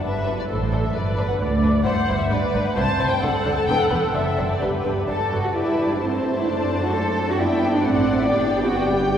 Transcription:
<<
  \new Staff \with { instrumentName = "Violin section" } { \time 2/4 \key g \major \tempo 4 = 131 e''8. d''16 c''8. e''16 | d''8. fis''16 r4 | fis''8. e''16 d''8. fis''16 | a''8. g''16 fis''8. a''16 |
g''16 fis''8. e''8. d''16 | b'4 a''8. fis''16 | e''8. d''16 c''8. e''16 | d''8. fis''16 a''8. fis''16 |
e''8. d''16 c''8. e''16 | d''8. fis''16 r4 | }
  \new Staff \with { instrumentName = "Violin section" } { \time 2/4 \key g \major << { r8 <d' b'>8 r8 <d' a'>8 | r8 <d' b'>8 r8 <d' b'>8 | <e' c''>8 <e' c''>8 <d' b'>8 <d' b'>8 | <e' c''>8 <e' c''>8 <d' c''>8 <d' c''>8 |
<d' b'>8 <d' b'>8 <d' c''>8 <d' c''>8 | <d' b'>8 <d' b'>8 d'8 fis'8 | d''4 a''4~ | a''2 |
g''4 fis''4 | g''2 | } \\ { r2 | r2 | r2 | r2 |
r2 | r2 | b'4 c''4~ | c''2 |
d''2~ | d''2 | } >> }
  \new Staff \with { instrumentName = "Viola section" } { \time 2/4 \key g \major << { b'4 a'4 | b'4 d''4 | c''4 b'4 | c''4 a'4~ |
a'2 | g'4. r8 | g'4 e'4 | d'2~ |
d'2 | g'2 | } \\ { r2 | r2 | r2 | r2 |
r2 | r2 | g4 a4~ | a2 |
b4 a4 | b2 | } >> }
  \new Staff \with { instrumentName = "Cello section" } { \clef bass \time 2/4 \key g \major << { r2 | r2 | r2 | r2 |
r2 | r4 a'8. fis'16 | e'8. d'16 c'8. e'16 | d'8. fis'16 a'8. fis'16 |
e'8. d'16 c'8. e'16 | d'8. fis'16 r4 | } \\ { g,4 a,4 | g,4 d,4 | g,8 g,8 g,8 g,8 | c,8 c,8 d,8 d,8 |
e,8 e,8 fis,8 fis,8 | g,8 g,8 g,8 g,8 | r2 | r2 |
r2 | r2 | } >> }
  \new Staff \with { instrumentName = "Double bass section" } { \clef bass \time 2/4 \key g \major g,,4 a,,4 | g,,4 d,4 | g,,8 g,,8 g,,8 g,,8 | c,8 c,8 d,8 d,8 |
e,,8 e,,8 fis,,8 fis,,8 | g,,8 g,,8 g,,8 g,,8 | g,2 | fis,2 |
g,4 a,,4 | g,,2 | }
>>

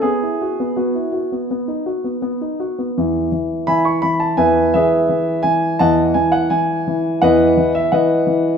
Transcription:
<<
  \new Staff \with { instrumentName = "Grand piano" } { \time 4/4 \key e \major \tempo 4 = 84 gis'4 fis'2 r4 | r4 <e'' gis'' b''>16 cis'''16 b''16 a''16 <b' e'' gis''>8 <gis' b' e''>4 gis''8 | <dis'' fis'' a''>8 gis''16 fis''16 gis''4 <b' dis'' fis''>8. e''16 <b' dis'' fis''>4 | }
  \new Staff \with { instrumentName = "Grand piano" } { \clef bass \time 4/4 \key e \major b16 e'16 fis'16 b16 b16 e'16 fis'16 b16 b16 dis'16 fis'16 b16 b16 dis'16 fis'16 b16 | <e, e>8 e8 e8 e8 <e, e>8 e8 e8 e8 | <e, e>8 e8 e8 e8 <e, e>8 e8 e8 e8 | }
>>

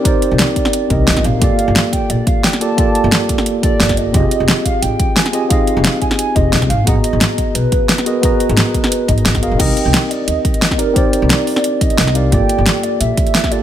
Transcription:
<<
  \new Staff \with { instrumentName = "Soft synth lead" } { \time 4/4 \key c \minor \tempo 4 = 176 c''4 d''4. ees''4 f''8~ | f''4. g''8 d''8 f''8 g''8 a''8~ | a''4. r4 d''4 ees''8~ | ees''4. f''8 g''4 aes''4 |
f''4. aes''4 ees''4 f''8 | ges''8 ees''4. ces''2~ | ces''2~ ces''8 ees''4 f''8 | g''4. d''8 ees''4. bes'8 |
c''4 d''4. ees''4 f''8 | g''4. d''8 e''4. d''8 | }
  \new Staff \with { instrumentName = "Tine electric piano" } { \time 4/4 \key c \minor <c' ees' g' bes' d''>2~ <c' ees' g' bes' d''>8 <c' ees' g' bes' ees''>4. | <bes f' g' a' d''>2.~ <bes f' g' a' d''>8 <bes f' g' a' d''>8 | <bes f' g' a' d''>2~ <bes f' g' a' d''>8 <bes f' g' a' d''>4. | <c' f' g' aes' ees''>2.~ <c' f' g' aes' ees''>8 <c' f' g' aes' ees''>8 |
<c' ees' f' aes' ees''>2~ <c' ees' f' aes' ees''>8 <c' f' g' aes' ees''>4 r8 | <ces' ges' aes' ees'' bes''>2.~ <ces' ges' aes' ees'' bes''>8 <ces' ges' aes' bes' ees''>8 | <ces' ges' aes' ees'' bes''>2~ <ces' ges' aes' ees'' bes''>8 r4 <ces' ges' aes' bes' ees''>8 | <c' ees' g' bes' ees''>2.~ <c' ees' g' bes' ees''>8 <c' ees' g' bes' d''>8 |
<c' ees' g' bes' d''>2~ <c' ees' g' bes' d''>8 r4 <c' ees' g' bes' d''>8 | <bes f' g' a' d''>2.~ <bes f' g' a' d''>8 <bes f' g' a' d''>8 | }
  \new Staff \with { instrumentName = "Upright bass" } { \clef bass \time 4/4 \key c \minor r8. c,16 r4. c,8 g,,8 bes,,8 | g,,16 r8 g,,16 r4 bes,,16 r4. r16 | r8. g,,16 r2 g,,4 | f,,16 r8 f,,16 r4 aes,,16 r4. r16 |
r8. f,,16 r4. f,,8 c,8 aes,,8 | aes,,16 r8 aes,,16 r4 ces,16 r4. r16 | r8. aes,,16 r4. aes,,8 aes,,8 ges,,16 ces,16 | c,16 r8 c,16 r4 ees,16 r4. r16 |
r8. c,16 r2 c,4 | g,,16 r8 g,,16 r4 bes,,16 r4. r16 | }
  \new DrumStaff \with { instrumentName = "Drums" } \drummode { \time 4/4 <hh bd>8 hh8 <hh sn>8 <hh bd>16 sn16 hh8 <hh bd>8 <hh sn>16 <hh bd sn>16 hh8 | <hh bd>8 hh8 <hh sn>8 <hh bd>8 hh8 <hh bd>8 <hh sn>16 <hh sn>16 hh8 | <hh bd>8 hh8 <hh sn>8 <hh bd>16 sn16 hh8 <hh bd>8 <hh sn>16 <hh bd sn>16 hh8 | <hh bd>8 hh8 <hh sn>8 <hh bd>8 hh8 <hh bd>8 <hh sn>16 <hh sn>16 hh8 |
<hh bd>8 hh8 <hh sn>8 <hh bd>16 sn16 hh8 <hh bd>8 <hh sn>16 <hh bd sn>16 hh8 | <hh bd>8 hh8 <hh sn>8 <hh bd>8 hh8 <hh bd>8 <hh sn>16 <hh sn>16 hh8 | <hh bd>8 hh16 hh16 <hh sn>8 <hh bd>16 sn16 hh8 <hh bd>16 hh16 <hh sn>16 <hh bd sn>16 hh8 | <cymc hh bd>8 hh8 <hh sn>8 hh8 hh8 <hh bd>16 hh16 <hh sn>16 <bd sn>16 hh8 |
<hh bd>8 hh8 <hh sn>8 hho16 sn16 hh8 <hh bd>16 hh16 <hh sn>16 sn16 hh8 | <hh bd>8 hh8 <hh sn>8 hh8 hh8 <hh bd>16 hh16 <hh sn>16 <bd sn>16 hh8 | }
>>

